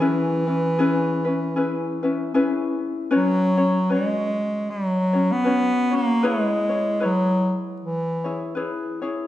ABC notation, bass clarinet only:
X:1
M:4/4
L:1/16
Q:"Swing" 1/4=77
K:E
V:1 name="Bass clarinet" clef=bass
E,12 z4 | [K:C#dor] F,4 G,4 F,3 B,3 A,2 | G,4 F,3 z E,4 z4 |]